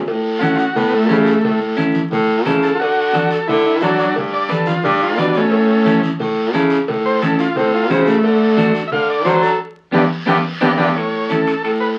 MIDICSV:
0, 0, Header, 1, 5, 480
1, 0, Start_track
1, 0, Tempo, 339751
1, 126, Time_signature, 4, 2, 24, 8
1, 16931, End_track
2, 0, Start_track
2, 0, Title_t, "Transistor combo organ"
2, 0, Program_c, 0, 18
2, 547, Note_on_c, 0, 65, 54
2, 582, Note_off_c, 0, 65, 0
2, 607, Note_on_c, 0, 66, 84
2, 780, Note_on_c, 0, 65, 61
2, 817, Note_off_c, 0, 65, 0
2, 818, Note_off_c, 0, 66, 0
2, 835, Note_on_c, 0, 66, 84
2, 1073, Note_off_c, 0, 66, 0
2, 1085, Note_on_c, 0, 59, 76
2, 1319, Note_off_c, 0, 59, 0
2, 1320, Note_on_c, 0, 57, 92
2, 2255, Note_off_c, 0, 57, 0
2, 3720, Note_on_c, 0, 69, 95
2, 3886, Note_on_c, 0, 65, 64
2, 3925, Note_off_c, 0, 65, 0
2, 3948, Note_on_c, 0, 66, 86
2, 3956, Note_off_c, 0, 69, 0
2, 4655, Note_off_c, 0, 66, 0
2, 4666, Note_on_c, 0, 69, 75
2, 4908, Note_off_c, 0, 69, 0
2, 4909, Note_on_c, 0, 64, 80
2, 5137, Note_off_c, 0, 64, 0
2, 5154, Note_on_c, 0, 64, 73
2, 5392, Note_off_c, 0, 64, 0
2, 5407, Note_on_c, 0, 54, 85
2, 5420, Note_on_c, 0, 62, 97
2, 5852, Note_off_c, 0, 54, 0
2, 5878, Note_off_c, 0, 62, 0
2, 6123, Note_on_c, 0, 74, 99
2, 6356, Note_off_c, 0, 74, 0
2, 6376, Note_on_c, 0, 69, 72
2, 6597, Note_on_c, 0, 65, 88
2, 6603, Note_off_c, 0, 69, 0
2, 6834, Note_off_c, 0, 65, 0
2, 6848, Note_on_c, 0, 62, 82
2, 7079, Note_off_c, 0, 62, 0
2, 7104, Note_on_c, 0, 65, 76
2, 7327, Note_off_c, 0, 65, 0
2, 7339, Note_on_c, 0, 62, 89
2, 7565, Note_off_c, 0, 62, 0
2, 7585, Note_on_c, 0, 57, 71
2, 7588, Note_on_c, 0, 61, 85
2, 8478, Note_off_c, 0, 57, 0
2, 8507, Note_off_c, 0, 61, 0
2, 9968, Note_on_c, 0, 72, 101
2, 10190, Note_on_c, 0, 69, 67
2, 10198, Note_off_c, 0, 72, 0
2, 10429, Note_off_c, 0, 69, 0
2, 10452, Note_on_c, 0, 65, 79
2, 10681, Note_off_c, 0, 65, 0
2, 10682, Note_on_c, 0, 60, 82
2, 10915, Note_off_c, 0, 60, 0
2, 10941, Note_on_c, 0, 65, 77
2, 11165, Note_off_c, 0, 65, 0
2, 11175, Note_on_c, 0, 60, 96
2, 11402, Note_off_c, 0, 60, 0
2, 11405, Note_on_c, 0, 57, 97
2, 12335, Note_off_c, 0, 57, 0
2, 12538, Note_on_c, 0, 76, 69
2, 12574, Note_off_c, 0, 76, 0
2, 12607, Note_on_c, 0, 77, 108
2, 12838, Note_off_c, 0, 77, 0
2, 12853, Note_on_c, 0, 74, 81
2, 13069, Note_on_c, 0, 72, 89
2, 13081, Note_off_c, 0, 74, 0
2, 13309, Note_off_c, 0, 72, 0
2, 13310, Note_on_c, 0, 69, 94
2, 13550, Note_off_c, 0, 69, 0
2, 14038, Note_on_c, 0, 62, 90
2, 14042, Note_on_c, 0, 67, 82
2, 14046, Note_on_c, 0, 59, 89
2, 14194, Note_off_c, 0, 62, 0
2, 14197, Note_off_c, 0, 67, 0
2, 14199, Note_off_c, 0, 59, 0
2, 14505, Note_on_c, 0, 62, 87
2, 14509, Note_on_c, 0, 59, 91
2, 14513, Note_on_c, 0, 67, 99
2, 14667, Note_off_c, 0, 62, 0
2, 14669, Note_off_c, 0, 59, 0
2, 14672, Note_off_c, 0, 67, 0
2, 14987, Note_on_c, 0, 62, 105
2, 14993, Note_on_c, 0, 59, 112
2, 14993, Note_on_c, 0, 67, 112
2, 15148, Note_off_c, 0, 62, 0
2, 15152, Note_off_c, 0, 59, 0
2, 15152, Note_off_c, 0, 67, 0
2, 15221, Note_on_c, 0, 59, 90
2, 15222, Note_on_c, 0, 62, 100
2, 15226, Note_on_c, 0, 67, 103
2, 15385, Note_off_c, 0, 59, 0
2, 15385, Note_off_c, 0, 62, 0
2, 15388, Note_off_c, 0, 67, 0
2, 15480, Note_on_c, 0, 73, 94
2, 15979, Note_off_c, 0, 73, 0
2, 15985, Note_on_c, 0, 69, 83
2, 16424, Note_off_c, 0, 69, 0
2, 16447, Note_on_c, 0, 69, 83
2, 16556, Note_off_c, 0, 69, 0
2, 16676, Note_on_c, 0, 71, 94
2, 16787, Note_off_c, 0, 71, 0
2, 16931, End_track
3, 0, Start_track
3, 0, Title_t, "Clean electric guitar"
3, 0, Program_c, 1, 27
3, 575, Note_on_c, 1, 61, 74
3, 581, Note_on_c, 1, 64, 53
3, 584, Note_on_c, 1, 69, 74
3, 927, Note_off_c, 1, 64, 0
3, 928, Note_off_c, 1, 61, 0
3, 932, Note_off_c, 1, 69, 0
3, 1533, Note_on_c, 1, 61, 70
3, 1541, Note_on_c, 1, 64, 66
3, 1547, Note_on_c, 1, 67, 76
3, 1887, Note_off_c, 1, 61, 0
3, 1888, Note_off_c, 1, 64, 0
3, 1893, Note_off_c, 1, 67, 0
3, 2494, Note_on_c, 1, 61, 84
3, 2499, Note_on_c, 1, 64, 77
3, 2507, Note_on_c, 1, 69, 79
3, 2846, Note_off_c, 1, 61, 0
3, 2850, Note_off_c, 1, 64, 0
3, 2851, Note_off_c, 1, 69, 0
3, 3468, Note_on_c, 1, 61, 77
3, 3475, Note_on_c, 1, 64, 58
3, 3482, Note_on_c, 1, 69, 90
3, 3814, Note_off_c, 1, 61, 0
3, 3814, Note_off_c, 1, 64, 0
3, 3820, Note_off_c, 1, 69, 0
3, 4423, Note_on_c, 1, 62, 67
3, 4431, Note_on_c, 1, 66, 61
3, 4440, Note_on_c, 1, 69, 86
3, 4770, Note_off_c, 1, 62, 0
3, 4774, Note_off_c, 1, 66, 0
3, 4779, Note_off_c, 1, 69, 0
3, 5393, Note_on_c, 1, 62, 68
3, 5398, Note_on_c, 1, 66, 60
3, 5399, Note_on_c, 1, 69, 87
3, 5734, Note_off_c, 1, 66, 0
3, 5736, Note_off_c, 1, 62, 0
3, 5738, Note_off_c, 1, 69, 0
3, 6338, Note_on_c, 1, 62, 65
3, 6348, Note_on_c, 1, 67, 58
3, 6351, Note_on_c, 1, 71, 76
3, 6688, Note_off_c, 1, 62, 0
3, 6690, Note_off_c, 1, 67, 0
3, 6694, Note_off_c, 1, 71, 0
3, 7314, Note_on_c, 1, 62, 65
3, 7324, Note_on_c, 1, 71, 80
3, 7328, Note_on_c, 1, 67, 61
3, 7656, Note_off_c, 1, 62, 0
3, 7659, Note_off_c, 1, 67, 0
3, 7660, Note_off_c, 1, 71, 0
3, 8261, Note_on_c, 1, 61, 83
3, 8275, Note_on_c, 1, 64, 71
3, 8282, Note_on_c, 1, 69, 94
3, 8608, Note_off_c, 1, 61, 0
3, 8615, Note_off_c, 1, 64, 0
3, 8619, Note_off_c, 1, 69, 0
3, 9237, Note_on_c, 1, 61, 86
3, 9243, Note_on_c, 1, 64, 80
3, 9249, Note_on_c, 1, 69, 98
3, 9576, Note_off_c, 1, 61, 0
3, 9580, Note_off_c, 1, 64, 0
3, 9580, Note_off_c, 1, 69, 0
3, 10215, Note_on_c, 1, 61, 75
3, 10218, Note_on_c, 1, 64, 50
3, 10224, Note_on_c, 1, 69, 74
3, 10544, Note_off_c, 1, 64, 0
3, 10546, Note_off_c, 1, 61, 0
3, 10550, Note_off_c, 1, 69, 0
3, 11155, Note_on_c, 1, 61, 72
3, 11165, Note_on_c, 1, 64, 51
3, 11172, Note_on_c, 1, 66, 81
3, 11496, Note_off_c, 1, 61, 0
3, 11498, Note_off_c, 1, 64, 0
3, 11504, Note_off_c, 1, 66, 0
3, 12105, Note_on_c, 1, 62, 91
3, 12115, Note_on_c, 1, 66, 79
3, 12119, Note_on_c, 1, 69, 88
3, 12450, Note_off_c, 1, 62, 0
3, 12455, Note_off_c, 1, 69, 0
3, 12456, Note_off_c, 1, 66, 0
3, 13064, Note_on_c, 1, 62, 74
3, 13082, Note_on_c, 1, 66, 68
3, 13091, Note_on_c, 1, 69, 68
3, 13410, Note_off_c, 1, 62, 0
3, 13419, Note_off_c, 1, 66, 0
3, 13421, Note_off_c, 1, 69, 0
3, 14016, Note_on_c, 1, 59, 98
3, 14020, Note_on_c, 1, 67, 77
3, 14024, Note_on_c, 1, 62, 86
3, 14181, Note_off_c, 1, 67, 0
3, 14182, Note_off_c, 1, 59, 0
3, 14186, Note_off_c, 1, 62, 0
3, 14492, Note_on_c, 1, 59, 108
3, 14499, Note_on_c, 1, 62, 97
3, 14505, Note_on_c, 1, 67, 101
3, 14661, Note_off_c, 1, 59, 0
3, 14662, Note_off_c, 1, 62, 0
3, 14662, Note_off_c, 1, 67, 0
3, 14988, Note_on_c, 1, 62, 100
3, 14995, Note_on_c, 1, 67, 93
3, 15001, Note_on_c, 1, 59, 98
3, 15150, Note_off_c, 1, 62, 0
3, 15150, Note_off_c, 1, 67, 0
3, 15157, Note_off_c, 1, 59, 0
3, 15236, Note_on_c, 1, 62, 111
3, 15236, Note_on_c, 1, 67, 88
3, 15240, Note_on_c, 1, 59, 104
3, 15392, Note_off_c, 1, 67, 0
3, 15395, Note_off_c, 1, 62, 0
3, 15396, Note_off_c, 1, 59, 0
3, 15955, Note_on_c, 1, 61, 60
3, 15963, Note_on_c, 1, 64, 60
3, 15971, Note_on_c, 1, 69, 63
3, 16298, Note_off_c, 1, 61, 0
3, 16302, Note_off_c, 1, 64, 0
3, 16304, Note_off_c, 1, 69, 0
3, 16931, End_track
4, 0, Start_track
4, 0, Title_t, "Baritone saxophone"
4, 0, Program_c, 2, 67
4, 125, Note_on_c, 2, 45, 91
4, 894, Note_off_c, 2, 45, 0
4, 1069, Note_on_c, 2, 45, 106
4, 1554, Note_on_c, 2, 49, 96
4, 1575, Note_off_c, 2, 45, 0
4, 1943, Note_off_c, 2, 49, 0
4, 2028, Note_on_c, 2, 45, 86
4, 2803, Note_off_c, 2, 45, 0
4, 2996, Note_on_c, 2, 45, 109
4, 3484, Note_on_c, 2, 49, 93
4, 3505, Note_off_c, 2, 45, 0
4, 3869, Note_off_c, 2, 49, 0
4, 3971, Note_on_c, 2, 50, 80
4, 4737, Note_off_c, 2, 50, 0
4, 4922, Note_on_c, 2, 50, 110
4, 5398, Note_on_c, 2, 54, 95
4, 5419, Note_off_c, 2, 50, 0
4, 5785, Note_off_c, 2, 54, 0
4, 5878, Note_on_c, 2, 43, 80
4, 6345, Note_off_c, 2, 43, 0
4, 6837, Note_on_c, 2, 43, 111
4, 7313, Note_on_c, 2, 47, 94
4, 7335, Note_off_c, 2, 43, 0
4, 7702, Note_off_c, 2, 47, 0
4, 7797, Note_on_c, 2, 45, 98
4, 8567, Note_off_c, 2, 45, 0
4, 8761, Note_on_c, 2, 45, 101
4, 9247, Note_on_c, 2, 49, 92
4, 9269, Note_off_c, 2, 45, 0
4, 9630, Note_off_c, 2, 49, 0
4, 9734, Note_on_c, 2, 45, 93
4, 10498, Note_off_c, 2, 45, 0
4, 10685, Note_on_c, 2, 45, 106
4, 11175, Note_on_c, 2, 49, 91
4, 11196, Note_off_c, 2, 45, 0
4, 11554, Note_off_c, 2, 49, 0
4, 11644, Note_on_c, 2, 50, 90
4, 12412, Note_off_c, 2, 50, 0
4, 12597, Note_on_c, 2, 50, 98
4, 13068, Note_on_c, 2, 54, 93
4, 13089, Note_off_c, 2, 50, 0
4, 13458, Note_off_c, 2, 54, 0
4, 14041, Note_on_c, 2, 43, 105
4, 14221, Note_off_c, 2, 43, 0
4, 14523, Note_on_c, 2, 43, 111
4, 14703, Note_off_c, 2, 43, 0
4, 15016, Note_on_c, 2, 43, 102
4, 15190, Note_off_c, 2, 43, 0
4, 15253, Note_on_c, 2, 43, 108
4, 15428, Note_off_c, 2, 43, 0
4, 15494, Note_on_c, 2, 45, 78
4, 16261, Note_off_c, 2, 45, 0
4, 16457, Note_on_c, 2, 45, 95
4, 16931, Note_off_c, 2, 45, 0
4, 16931, End_track
5, 0, Start_track
5, 0, Title_t, "Drums"
5, 108, Note_on_c, 9, 74, 71
5, 111, Note_on_c, 9, 56, 94
5, 249, Note_off_c, 9, 74, 0
5, 252, Note_off_c, 9, 56, 0
5, 589, Note_on_c, 9, 73, 69
5, 590, Note_on_c, 9, 56, 60
5, 599, Note_on_c, 9, 63, 80
5, 731, Note_off_c, 9, 56, 0
5, 731, Note_off_c, 9, 73, 0
5, 740, Note_off_c, 9, 63, 0
5, 820, Note_on_c, 9, 73, 68
5, 961, Note_off_c, 9, 73, 0
5, 1066, Note_on_c, 9, 74, 71
5, 1074, Note_on_c, 9, 64, 83
5, 1078, Note_on_c, 9, 56, 86
5, 1207, Note_off_c, 9, 74, 0
5, 1216, Note_off_c, 9, 64, 0
5, 1219, Note_off_c, 9, 56, 0
5, 1544, Note_on_c, 9, 73, 68
5, 1556, Note_on_c, 9, 56, 62
5, 1556, Note_on_c, 9, 66, 72
5, 1557, Note_on_c, 9, 63, 81
5, 1685, Note_off_c, 9, 73, 0
5, 1697, Note_off_c, 9, 56, 0
5, 1697, Note_off_c, 9, 66, 0
5, 1698, Note_off_c, 9, 63, 0
5, 1784, Note_on_c, 9, 73, 64
5, 1926, Note_off_c, 9, 73, 0
5, 2015, Note_on_c, 9, 74, 65
5, 2040, Note_on_c, 9, 64, 75
5, 2048, Note_on_c, 9, 56, 102
5, 2156, Note_off_c, 9, 74, 0
5, 2181, Note_off_c, 9, 64, 0
5, 2189, Note_off_c, 9, 56, 0
5, 2494, Note_on_c, 9, 73, 67
5, 2518, Note_on_c, 9, 63, 76
5, 2531, Note_on_c, 9, 56, 68
5, 2635, Note_off_c, 9, 73, 0
5, 2659, Note_off_c, 9, 63, 0
5, 2673, Note_off_c, 9, 56, 0
5, 2743, Note_on_c, 9, 73, 63
5, 2758, Note_on_c, 9, 63, 65
5, 2884, Note_off_c, 9, 73, 0
5, 2899, Note_off_c, 9, 63, 0
5, 2984, Note_on_c, 9, 74, 68
5, 2993, Note_on_c, 9, 64, 84
5, 3008, Note_on_c, 9, 56, 81
5, 3125, Note_off_c, 9, 74, 0
5, 3135, Note_off_c, 9, 64, 0
5, 3149, Note_off_c, 9, 56, 0
5, 3469, Note_on_c, 9, 73, 75
5, 3479, Note_on_c, 9, 63, 76
5, 3479, Note_on_c, 9, 64, 71
5, 3490, Note_on_c, 9, 56, 66
5, 3490, Note_on_c, 9, 66, 66
5, 3610, Note_off_c, 9, 73, 0
5, 3620, Note_off_c, 9, 63, 0
5, 3620, Note_off_c, 9, 64, 0
5, 3631, Note_off_c, 9, 56, 0
5, 3631, Note_off_c, 9, 66, 0
5, 3705, Note_on_c, 9, 73, 70
5, 3847, Note_off_c, 9, 73, 0
5, 3956, Note_on_c, 9, 74, 70
5, 3978, Note_on_c, 9, 56, 100
5, 4098, Note_off_c, 9, 74, 0
5, 4119, Note_off_c, 9, 56, 0
5, 4433, Note_on_c, 9, 73, 62
5, 4446, Note_on_c, 9, 56, 70
5, 4453, Note_on_c, 9, 63, 88
5, 4574, Note_off_c, 9, 73, 0
5, 4587, Note_off_c, 9, 56, 0
5, 4594, Note_off_c, 9, 63, 0
5, 4671, Note_on_c, 9, 73, 68
5, 4812, Note_off_c, 9, 73, 0
5, 4919, Note_on_c, 9, 74, 72
5, 4928, Note_on_c, 9, 64, 79
5, 4933, Note_on_c, 9, 56, 78
5, 5060, Note_off_c, 9, 74, 0
5, 5069, Note_off_c, 9, 64, 0
5, 5074, Note_off_c, 9, 56, 0
5, 5381, Note_on_c, 9, 73, 68
5, 5403, Note_on_c, 9, 63, 73
5, 5404, Note_on_c, 9, 56, 67
5, 5522, Note_off_c, 9, 73, 0
5, 5544, Note_off_c, 9, 63, 0
5, 5545, Note_off_c, 9, 56, 0
5, 5631, Note_on_c, 9, 73, 60
5, 5772, Note_off_c, 9, 73, 0
5, 5863, Note_on_c, 9, 74, 67
5, 5878, Note_on_c, 9, 56, 106
5, 5897, Note_on_c, 9, 64, 68
5, 6005, Note_off_c, 9, 74, 0
5, 6020, Note_off_c, 9, 56, 0
5, 6039, Note_off_c, 9, 64, 0
5, 6349, Note_on_c, 9, 56, 64
5, 6353, Note_on_c, 9, 73, 76
5, 6381, Note_on_c, 9, 63, 89
5, 6490, Note_off_c, 9, 56, 0
5, 6495, Note_off_c, 9, 73, 0
5, 6522, Note_off_c, 9, 63, 0
5, 6584, Note_on_c, 9, 73, 73
5, 6621, Note_on_c, 9, 63, 71
5, 6725, Note_off_c, 9, 73, 0
5, 6762, Note_off_c, 9, 63, 0
5, 6816, Note_on_c, 9, 74, 69
5, 6835, Note_on_c, 9, 56, 80
5, 6851, Note_on_c, 9, 64, 81
5, 6957, Note_off_c, 9, 74, 0
5, 6977, Note_off_c, 9, 56, 0
5, 6992, Note_off_c, 9, 64, 0
5, 7312, Note_on_c, 9, 56, 62
5, 7312, Note_on_c, 9, 66, 61
5, 7314, Note_on_c, 9, 73, 67
5, 7328, Note_on_c, 9, 63, 81
5, 7453, Note_off_c, 9, 56, 0
5, 7453, Note_off_c, 9, 66, 0
5, 7456, Note_off_c, 9, 73, 0
5, 7470, Note_off_c, 9, 63, 0
5, 7545, Note_on_c, 9, 73, 62
5, 7686, Note_off_c, 9, 73, 0
5, 7790, Note_on_c, 9, 74, 65
5, 7795, Note_on_c, 9, 56, 98
5, 7931, Note_off_c, 9, 74, 0
5, 7936, Note_off_c, 9, 56, 0
5, 8278, Note_on_c, 9, 63, 85
5, 8282, Note_on_c, 9, 56, 66
5, 8286, Note_on_c, 9, 73, 67
5, 8419, Note_off_c, 9, 63, 0
5, 8423, Note_off_c, 9, 56, 0
5, 8428, Note_off_c, 9, 73, 0
5, 8522, Note_on_c, 9, 73, 68
5, 8530, Note_on_c, 9, 63, 67
5, 8664, Note_off_c, 9, 73, 0
5, 8672, Note_off_c, 9, 63, 0
5, 8751, Note_on_c, 9, 74, 72
5, 8757, Note_on_c, 9, 64, 78
5, 8759, Note_on_c, 9, 56, 88
5, 8893, Note_off_c, 9, 74, 0
5, 8898, Note_off_c, 9, 64, 0
5, 8901, Note_off_c, 9, 56, 0
5, 9246, Note_on_c, 9, 73, 66
5, 9248, Note_on_c, 9, 56, 72
5, 9248, Note_on_c, 9, 63, 77
5, 9388, Note_off_c, 9, 73, 0
5, 9389, Note_off_c, 9, 56, 0
5, 9389, Note_off_c, 9, 63, 0
5, 9472, Note_on_c, 9, 73, 71
5, 9614, Note_off_c, 9, 73, 0
5, 9720, Note_on_c, 9, 74, 72
5, 9724, Note_on_c, 9, 56, 107
5, 9737, Note_on_c, 9, 64, 70
5, 9862, Note_off_c, 9, 74, 0
5, 9865, Note_off_c, 9, 56, 0
5, 9879, Note_off_c, 9, 64, 0
5, 10199, Note_on_c, 9, 73, 72
5, 10201, Note_on_c, 9, 56, 75
5, 10211, Note_on_c, 9, 63, 92
5, 10341, Note_off_c, 9, 73, 0
5, 10342, Note_off_c, 9, 56, 0
5, 10352, Note_off_c, 9, 63, 0
5, 10440, Note_on_c, 9, 73, 69
5, 10581, Note_off_c, 9, 73, 0
5, 10675, Note_on_c, 9, 64, 74
5, 10693, Note_on_c, 9, 56, 77
5, 10696, Note_on_c, 9, 74, 66
5, 10816, Note_off_c, 9, 64, 0
5, 10835, Note_off_c, 9, 56, 0
5, 10838, Note_off_c, 9, 74, 0
5, 11164, Note_on_c, 9, 63, 79
5, 11164, Note_on_c, 9, 64, 67
5, 11164, Note_on_c, 9, 73, 71
5, 11168, Note_on_c, 9, 56, 64
5, 11168, Note_on_c, 9, 66, 67
5, 11305, Note_off_c, 9, 73, 0
5, 11306, Note_off_c, 9, 63, 0
5, 11306, Note_off_c, 9, 64, 0
5, 11310, Note_off_c, 9, 56, 0
5, 11310, Note_off_c, 9, 66, 0
5, 11400, Note_on_c, 9, 73, 69
5, 11541, Note_off_c, 9, 73, 0
5, 11629, Note_on_c, 9, 74, 78
5, 11642, Note_on_c, 9, 56, 102
5, 11770, Note_off_c, 9, 74, 0
5, 11784, Note_off_c, 9, 56, 0
5, 12117, Note_on_c, 9, 63, 92
5, 12123, Note_on_c, 9, 73, 69
5, 12131, Note_on_c, 9, 56, 65
5, 12259, Note_off_c, 9, 63, 0
5, 12264, Note_off_c, 9, 73, 0
5, 12272, Note_off_c, 9, 56, 0
5, 12361, Note_on_c, 9, 73, 69
5, 12502, Note_off_c, 9, 73, 0
5, 12593, Note_on_c, 9, 64, 77
5, 12605, Note_on_c, 9, 74, 71
5, 12609, Note_on_c, 9, 56, 83
5, 12735, Note_off_c, 9, 64, 0
5, 12746, Note_off_c, 9, 74, 0
5, 12751, Note_off_c, 9, 56, 0
5, 13073, Note_on_c, 9, 73, 78
5, 13079, Note_on_c, 9, 63, 80
5, 13097, Note_on_c, 9, 56, 70
5, 13097, Note_on_c, 9, 66, 72
5, 13214, Note_off_c, 9, 73, 0
5, 13221, Note_off_c, 9, 63, 0
5, 13238, Note_off_c, 9, 56, 0
5, 13238, Note_off_c, 9, 66, 0
5, 13320, Note_on_c, 9, 73, 67
5, 13461, Note_off_c, 9, 73, 0
5, 14035, Note_on_c, 9, 74, 95
5, 14038, Note_on_c, 9, 65, 95
5, 14049, Note_on_c, 9, 63, 105
5, 14176, Note_off_c, 9, 74, 0
5, 14179, Note_off_c, 9, 65, 0
5, 14190, Note_off_c, 9, 63, 0
5, 14510, Note_on_c, 9, 74, 102
5, 14523, Note_on_c, 9, 65, 93
5, 14525, Note_on_c, 9, 63, 98
5, 14652, Note_off_c, 9, 74, 0
5, 14664, Note_off_c, 9, 65, 0
5, 14666, Note_off_c, 9, 63, 0
5, 15000, Note_on_c, 9, 74, 106
5, 15010, Note_on_c, 9, 63, 92
5, 15010, Note_on_c, 9, 65, 94
5, 15142, Note_off_c, 9, 74, 0
5, 15151, Note_off_c, 9, 65, 0
5, 15152, Note_off_c, 9, 63, 0
5, 15239, Note_on_c, 9, 74, 101
5, 15240, Note_on_c, 9, 63, 101
5, 15254, Note_on_c, 9, 65, 98
5, 15380, Note_off_c, 9, 74, 0
5, 15381, Note_off_c, 9, 63, 0
5, 15395, Note_off_c, 9, 65, 0
5, 15486, Note_on_c, 9, 74, 67
5, 15510, Note_on_c, 9, 65, 64
5, 15627, Note_off_c, 9, 74, 0
5, 15651, Note_off_c, 9, 65, 0
5, 15955, Note_on_c, 9, 73, 65
5, 15980, Note_on_c, 9, 65, 63
5, 15986, Note_on_c, 9, 63, 73
5, 16097, Note_off_c, 9, 73, 0
5, 16121, Note_off_c, 9, 65, 0
5, 16127, Note_off_c, 9, 63, 0
5, 16206, Note_on_c, 9, 73, 59
5, 16214, Note_on_c, 9, 65, 64
5, 16347, Note_off_c, 9, 73, 0
5, 16356, Note_off_c, 9, 65, 0
5, 16436, Note_on_c, 9, 74, 66
5, 16455, Note_on_c, 9, 65, 63
5, 16577, Note_off_c, 9, 74, 0
5, 16597, Note_off_c, 9, 65, 0
5, 16931, End_track
0, 0, End_of_file